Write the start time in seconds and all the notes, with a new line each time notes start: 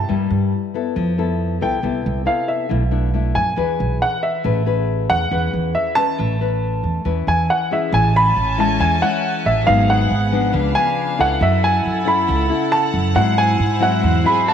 Already playing: A5
0.09 G2 G3 A#3 E4
0.30 G2
0.74 B3 E4 A4
0.96 F2 F3
1.18 B3 E4 A4
1.61 C2 B3 E4 A4 G5
1.83 C2 C3 B3 E4 A4
2.06 C2
2.25 B3 E4 A4 F5
2.48 E5
2.69 B1 B2 A3 D4 E4
2.91 A3 D4 E4
3.13 A3 D4 E4
3.35 F#2 G#5
3.56 E2 E3 D4 G#4 B4
3.80 B1
4.02 F#5
4.23 E5
4.44 A1 A3 C#4 G#4 B4
4.66 C#4 G#4 B4
5.10 E2 F#5
5.31 E2 E3 C#4 G#4 B4
5.53 E2
5.75 E5
5.95 C#4 B4 A5
6.18 A1 A3
6.41 C#4 B4
6.83 E2
7.05 E2 E3 C#4 B4
7.27 E2 G#5
7.50 F#5
7.71 C#4 E4 G#4 E5
7.92 A1 A2 C#4 G#5 A5
8.16 B5
8.36 A1
8.58 G#3 C#4 E4 A5
8.79 E2 E3 G#5
9.02 G#3 C#4 E4 F#5
9.45 A1 E5
9.65 G#1 G#2 F#3 B3 D#4 G#4 F5 F#5
9.90 F#5
10.10 G#1
10.31 F3 B3 D4
10.53 C#2 C#3 D4 B4 F5
10.75 F3 B3 D4 G#5
11.18 C#2 C#4 E4 A4 F#5
11.40 F#2 F#3 E4 A4 E5 F#5
11.64 G#5
11.85 F#2
12.05 C#4 E4 A4 B5
12.27 C#2 C#3
12.49 C#4 E4 A4
12.72 A5
12.94 F#2
13.14 G#2 F#3 C4 E4 C5 F#5
13.38 G#5
13.59 G#2
13.80 F#3 C4 E4 F#5
14.01 E2 G#2
14.23 F#3 C4 E4 G#4 B5
14.46 F#4 A5